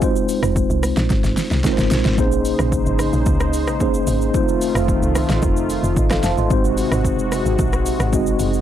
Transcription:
Already playing: F#4 D#5
0.01 G#3 C4 D#4 F4 C5, kick, shaker
0.16 shaker
0.29 open hi-hat, shaker
0.43 F1, cross-stick, shaker
0.56 kick, shaker
0.70 C2, shaker
0.83 cross-stick, open hi-hat, shaker
0.97 A#1, snare, shaker
1.10 G#1, kick, snare, shaker
1.24 G#1, snare, shaker
1.37 snare, open hi-hat, shaker
1.51 C2, snare, shaker
1.64 G#3 C4 D#4 F4 A#4, kick, snare, shaker
1.73 C5
1.78 G#1, snare, shaker
1.91 A#1, snare, open hi-hat, shaker
2.05 G#1, snare, shaker
2.18 A#1 C#3 G#3 A#3 C4 D#4 G#4 C5, kick, shaker
2.25 C#4
2.32 shaker
2.45 open hi-hat, shaker
2.59 A#1, cross-stick, shaker
2.72 kick, shaker
2.86 G#1, shaker
2.99 cross-stick, open hi-hat, shaker
3.13 A#1, shaker
3.26 C#2, kick, shaker
3.40 cross-stick, shaker
3.53 open hi-hat, shaker
3.67 A#1, cross-stick, shaker
3.80 A#3 C#4 D#4 G#4 C5, kick, shaker
3.94 shaker
4.07 G#1, open hi-hat, shaker
4.22 shaker
4.34 D#3 F#3 A3 C4 D#4 F4 C5, kick, shaker
4.40 A3
4.48 shaker
4.61 open hi-hat, shaker
4.75 F1, cross-stick, shaker
4.88 kick, shaker
5.02 C2, shaker
5.15 cross-stick, open hi-hat, shaker
5.29 A1, snare, shaker
5.42 F1, kick, shaker
5.57 shaker
5.70 open hi-hat, shaker
5.83 F1, shaker
5.97 A1 D#5, kick, shaker
6.10 A4 F5, cross-stick, snare, shaker
6.23 F1 C5 A5, snare, open hi-hat, shaker
6.38 G#1 D#5 C6, shaker
6.50 G#1 C3 G#3 C4 D#4 F#4 C5, kick, shaker
6.65 shaker
6.78 open hi-hat, shaker
6.92 G#1, cross-stick, shaker
7.05 kick, shaker
7.19 F#1, shaker
7.32 cross-stick, open hi-hat, shaker
7.45 G#1, shaker
7.59 A#1, kick, shaker
7.73 cross-stick, shaker
7.86 open hi-hat, shaker
8.00 G#1, cross-stick, shaker
8.12 G#3 C4 D#4 F#4 D#5, kick, shaker
8.27 shaker
8.39 F#1, open hi-hat, shaker
8.54 shaker

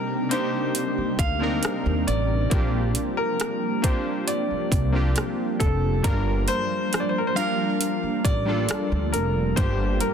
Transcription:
Already playing: C3 G3 A#3 C4 D4 D#4 G4 A#4
0.29 A#3 C4 D4 D#4 G4 C5, closed hi-hat
0.75 closed hi-hat
0.98 muted upright bass stroke
1.19 D2 F5, kick, closed hi-hat
1.39 A#3 C4 D4 D#4 A#4
1.63 cross-stick, closed hi-hat
1.86 D#2
2.07 A1 D5, closed hi-hat
2.50 A#1 F3 A#3 C4 D4 F4 G4, kick, closed hi-hat
2.95 closed hi-hat
3.17 A#4
3.40 cross-stick, closed hi-hat
3.82 A#3 C4 D4 F4 G4 C5, kick, closed hi-hat
4.27 D5, closed hi-hat
4.51 muted upright bass stroke
4.72 C2, kick, closed hi-hat
4.92 A#3 C4 D4 F4 G4
5.16 cross-stick, closed hi-hat
5.60 F1 A4, kick, closed hi-hat
6.02 G1 G3 A#3 D4 F4 A#4, kick, closed hi-hat
6.48 C5, closed hi-hat
6.93 cross-stick, closed hi-hat
7.00 D5
7.09 C5
7.18 A#4
7.27 C5
7.35 G3 A#3 D4 F4 A#4 F5, closed hi-hat
7.81 closed hi-hat
8.03 muted upright bass stroke
8.24 A1 D5, kick, closed hi-hat
8.45 G3 A#3 D4 F4 A4
8.69 cross-stick, closed hi-hat
8.92 D2
9.12 F1 A#4, closed hi-hat
9.56 G1 G3 A#3 D4 F4 G4 C5 A5, kick, closed hi-hat
10.01 A#4, closed hi-hat

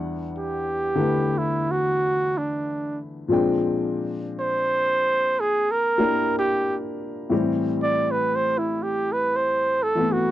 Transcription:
Already playing: E2 E3 G3 D4 F#5
0.38 G4
0.95 D3 A3 E4 B4
1.38 E4
1.71 F#4
2.38 D4
3.28 A#2 F3 G#3 C4 D4
3.33 G5
4.40 C5
5.40 G#4
5.71 A#4
5.98 A#3 D4 E4 G4 A#4
6.39 G4
7.30 A2 E3 G3 C4 G4
7.83 D5
8.11 B4
8.36 C5
8.58 E4
8.83 G4
9.12 B4
9.36 C5
9.83 A4
9.95 E3 A3 B3 E4
10.13 F#4

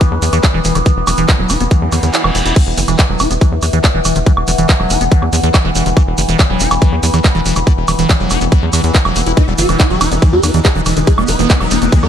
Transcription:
Already playing: E3 B3
0.01 E3, kick, closed hi-hat, shekere
0.11 E2 G3
0.22 E2 E3, open hi-hat, shekere
0.33 E2 E3, closed hi-hat, high woodblock, shekere
0.43 G3, kick, clap, closed hi-hat, shekere
0.54 E1 E3
0.65 E1 E3, open hi-hat, shekere
0.75 E1 D#3, closed hi-hat, high woodblock, shekere
0.86 E3, kick, closed hi-hat, shekere
0.97 E1
1.07 E1 E3 B3, open hi-hat, high woodblock, shekere
1.17 E1 E3, closed hi-hat, shekere
1.29 kick, clap, closed hi-hat, shekere
1.39 E1 F#3
1.49 E1 E4, open hi-hat, high woodblock, shekere
1.60 E1 B3, closed hi-hat, shekere
1.71 E3, kick, closed hi-hat, reverse cymbal, shekere
1.82 E2 G3
1.92 E2 D#3 B3, open hi-hat, high woodblock, shekere
2.03 E2 D#3 B3, closed hi-hat, shekere
2.13 E4, clap, closed hi-hat, shekere
2.24 E1 E3, high woodblock
2.35 E1 E4, open hi-hat, shekere
2.46 E1 E4, closed hi-hat, shekere
2.56 E3 B3, kick, closed hi-hat, crash, shekere
2.67 E1
2.77 F#1 E3, open hi-hat, shekere
2.88 E1 E3, closed hi-hat, high woodblock, shekere
2.98 E3, kick, clap, closed hi-hat, shekere
3.09 E1 F#3
3.19 E1 E4, open hi-hat, high woodblock, shekere
3.31 E1 B3, closed hi-hat, shekere
3.41 E3, kick, closed hi-hat, shekere
3.52 E2 G3
3.62 E2 E3, open hi-hat, high woodblock, shekere
3.73 E2 E3, closed hi-hat, shekere
3.84 G3, kick, clap, closed hi-hat, shekere
3.94 E1 E3
4.05 E1 E3, open hi-hat, high woodblock, shekere
4.15 E1 D#3, closed hi-hat, shekere
4.26 E3, kick, closed hi-hat, shekere
4.37 E1, high woodblock
4.48 E1 E3, open hi-hat, shekere
4.58 E1 E3, closed hi-hat, shekere
4.69 kick, clap, closed hi-hat, shekere
4.80 E1 F#3, high woodblock
4.90 E1 E4, open hi-hat, shekere
5.01 E1 B3, closed hi-hat, shekere
5.11 E3, kick, closed hi-hat, shekere
5.22 E2 G3, high woodblock
5.33 E2 E3, open hi-hat, shekere
5.43 E2 E3, closed hi-hat, shekere
5.54 G3, kick, clap, closed hi-hat, high woodblock, shekere
5.65 E1 E3
5.75 E1 E3, open hi-hat, shekere
5.86 E1 D#3, closed hi-hat, shekere
5.97 E3, kick, closed hi-hat, high woodblock, shekere
6.07 E1
6.18 F#1 E3, open hi-hat, shekere
6.29 E1 E3, closed hi-hat, shekere
6.39 kick, clap, closed hi-hat, high woodblock, shekere
6.50 E1 F#3
6.60 E1 E4, open hi-hat, shekere
6.71 E1 B3, closed hi-hat, high woodblock, shekere
6.82 E3, kick, closed hi-hat, shekere
6.92 E2 G3
7.03 E2 E3, open hi-hat, shekere
7.13 E2 E3, closed hi-hat, high woodblock, shekere
7.24 G3, kick, clap, closed hi-hat, shekere
7.35 E1 E3
7.46 E1 E3, open hi-hat, shekere
7.56 E1 D#3, closed hi-hat, high woodblock, shekere
7.67 E3, kick, closed hi-hat, shekere
7.77 E1
7.88 E1 E3, open hi-hat, high woodblock, shekere
7.99 E1 E3, closed hi-hat, shekere
8.09 kick, clap, closed hi-hat, shekere
8.20 E1 F#3
8.30 E1 E4, open hi-hat, high woodblock, shekere
8.41 E1 B3, closed hi-hat, shekere
8.52 E3, kick, closed hi-hat, shekere
8.63 E2 G3
8.73 E2 E3, open hi-hat, high woodblock, shekere
8.84 E2 E3, closed hi-hat, shekere
8.95 E3, kick, clap, closed hi-hat, shekere
9.05 E1 F#3, high woodblock
9.16 E1 B3, open hi-hat, shekere
9.26 E1 E4, closed hi-hat, shekere
9.37 E3 D#4 E4, kick, closed hi-hat, ride, shekere
9.48 E1 E3 G3
9.58 F#1 E3 F#4, open hi-hat, ride, shekere
9.69 E1 E3, closed hi-hat, high woodblock, shekere
9.80 E3, kick, clap, closed hi-hat, ride, shekere
9.90 E1 F#3 G4
10.01 E1 E3 E4, open hi-hat, ride, high woodblock, shekere
10.11 E1 E3 B3, closed hi-hat, shekere
10.22 E3, kick, closed hi-hat, ride, shekere
10.33 E2 G3 G4
10.43 E2 E3, open hi-hat, ride, high woodblock, shekere
10.54 E2 E3, closed hi-hat, shekere
10.65 G3 A4, kick, clap, closed hi-hat, ride, shekere
10.75 E1 E3
10.86 E1 E3, open hi-hat, ride, high woodblock, shekere
10.96 E1 D#3 E3, closed hi-hat, shekere
11.07 E3 A4, kick, closed hi-hat, ride, shekere
11.18 E1 G3 B3, high woodblock
11.27 E1 E3 B3 B4, open hi-hat, ride, shekere
11.39 E1 E3 B3, closed hi-hat, shekere
11.50 B3, kick, clap, closed hi-hat, ride, shekere
11.60 E1 F#3 B4, high woodblock
11.71 E1 B3 E4, open hi-hat, ride, shekere
11.82 E1 B3, closed hi-hat, shekere
11.92 E3 G3 B3, kick, closed hi-hat, ride, shekere
12.03 E2 G3 B4, high woodblock

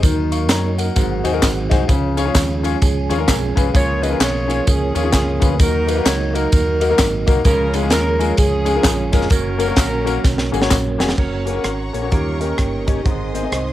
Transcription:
Already playing: D#4
0.03 D#2 D#3 F#3 A#3, kick, ride bell, tambourine
0.32 F5 C#6, ride bell, tambourine
0.49 F#2 C#5 A#5, snare, clap, ride bell, tambourine
0.78 A#4 F#5, ride bell, tambourine
0.96 G#1 G#2 D#3 G#3 C4 F#4, kick, ride bell, tambourine
1.24 D#2 D#4 F#4 G#4 C5, ride bell, tambourine
1.32 D#4 F#4 G#4 A#4
1.42 G#1, kick, snare, clap, ride bell, tambourine
1.69 C2 D#4 F#4 G#4 C5, kick, snare, ride bell, tambourine
1.88 C#2 C#3 F3 C#4, kick, ride bell, tambourine
2.17 C#4 F4 G#4 C#5, ride bell, tambourine
2.26 C#4 F4 G#4 C#5
2.34 D#2, kick, snare, clap, ride bell, tambourine
2.63 C#4 F4 G#4 C#5, ride bell, tambourine
2.82 C#2 G#4, kick, ride bell, tambourine
3.09 D#2 C#4 F4 G#4 A#4 C#5, ride bell, tambourine
3.18 C#4 F4 G#4 A#4
3.28 B1 G#4, kick, snare, clap, ride bell, tambourine
3.56 C2 C#4 F4 G#4 B4, kick, ride bell, tambourine
3.74 C#2 C#3 A#3 F4 G#4 C#5, kick, ride bell, tambourine
4.01 C#4 F4 G#4 B4 D#5, ride bell, tambourine
4.10 C#4 F4 G#4 A#4
4.20 B1 F4 G#4 C#5, snare, clap, ride bell, tambourine
4.48 C#4 F4 G#4 C#5, ride bell, tambourine
4.67 C#2 C#4 F4 G#4, kick, ride bell, tambourine
4.95 D#2 C#4 F4 G#4 C#5, ride bell, tambourine
5.03 C#4 F4 G#4 C#5
5.13 C#2, kick, snare, clap, ride bell, tambourine
5.40 D2 C#4 F4 G#4 B4, kick, ride bell, tambourine
5.59 D#2 D#3 F#3 D#4 F#4 A#4, kick, ride bell, tambourine
5.87 A#3 D#4 F#4 A#4 B4, ride bell, tambourine
5.95 A#3 D#4 F#4 A#4
6.05 C#2 C#5, snare, clap, ride bell, tambourine
6.33 A#3 D#4 F#4 A#4, ride bell, tambourine
6.52 D#2, kick, ride bell, tambourine
6.80 A#3 D#4 F#4 A#4, ride bell, tambourine
6.89 A#3 D#4 F#4 A#4
6.98 G#1, kick, snare, clap, ride bell, tambourine
7.26 C2 A#3 D#4 F#4 A#4, kick, ride bell, tambourine
7.44 C#2 C#3 F3 G#3 C#4 F4 A#4, kick, ride bell, tambourine
7.73 G#3 C#4 F4 G#4, ride bell, tambourine
7.83 G#3 C#4 F4 G#4
7.90 D#2 C#4 F4 A#4, snare, clap, ride bell, tambourine
8.19 G#3 C#4 F4 G#4, ride bell, tambourine
8.37 C#2 C#4 F4 G#4, kick, ride bell, tambourine
8.65 G#3 C#4 F4 G#4, ride bell, tambourine
8.75 G#3 C#4 F4 A#4
8.83 A#1, kick, snare, clap, ride bell, tambourine
9.12 F1 G#3 C#4 F4 G#4 A#4, kick, snare, ride bell, tambourine
9.21 snare
9.30 F#1 F#3 A#3 C#4 F#4 A#4, kick, ride bell, tambourine
9.58 A#3 C#4 F#4 A#4, ride bell, tambourine
9.67 A#3 C#4 F#4 A#4
9.76 A#1, kick, snare, clap, ride bell, tambourine
10.05 A#3 C#4 F#4 A#4, ride bell, tambourine
10.24 B1, kick, snare, tambourine
10.38 snare
10.52 G#1 A#3 C#4 F#4 G#4, tambourine
10.61 A#3 C#4 F#4 C#5, snare
10.71 A#1, kick, snare, clap, tambourine
10.98 F1 A#3 C#4 F#4 G#4, snare, tambourine
11.09 snare
11.17 F#1 A#3 C#4 F#4 A#4 C#5 F#5 A#5 C#6, kick, crash
11.45 A#3 C#4 F#4 G#4 A#4, closed hi-hat
11.54 A#3 C#4 F#4 A#4
11.64 G#1 A#4, cross-stick, closed hi-hat
11.93 A#1 A#3 C#4 F#4 G#4 C#5, closed hi-hat
12.02 A#3 C#4 F#4 C#5
12.11 D#2 D#3 G3 A#3 C#4 F4 G4 D#5 G5, kick, closed hi-hat
12.40 A#3 C#4 D#4 G4 A#4, closed hi-hat
12.58 G1, kick, cross-stick, closed hi-hat
12.87 C#4 D#4 G4 C#5, kick, closed hi-hat
13.04 G#1 G#2 C4 D#4 G#4 G#5 C6 D#6, kick, closed hi-hat
13.33 C4 D#4 G#4 A#4 C5, closed hi-hat
13.43 C4 D#4 G#4 D#5
13.51 C2 C5, cross-stick, closed hi-hat

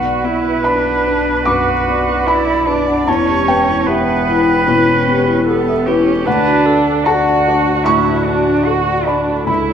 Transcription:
Already playing: B1 F#4 B4 F#5
0.04 D5
0.24 B3 E4 F#5
0.45 B4
0.64 D4 B4 B5
0.87 B5
1.07 D4 B4
1.45 F#2 F#4 B4 D6
1.88 B3 D5
2.08 B4
2.27 E4 B4 D5 B5
2.47 B5
2.67 D4 B4 D5
2.87 F#5
3.07 E1 E2 C#4 E4 C#5 A5
3.29 G4
3.48 B3 B4 G5
3.68 E4
3.87 B3 G4 B4 E5
4.08 E5
4.28 E4 B4
4.67 B2 C#4 E4
5.08 B3 G4
5.28 E4
5.46 B3 G4 A4
5.68 E5
5.86 C#4 E4 G4 B4
6.08 B4
6.25 D2 D4 B4 F#5
6.47 F#4
6.66 D4 A4
6.88 D4
7.05 F#4 A4 D5 A5
7.28 D5
7.48 D4 D5
7.84 A2 D4 E4 C#6
8.25 D4 F#4
8.48 D4
8.65 F#4 A4
8.89 D5
9.06 D4 D5 B5
9.30 A4
9.47 C#2 E4 A4 B5

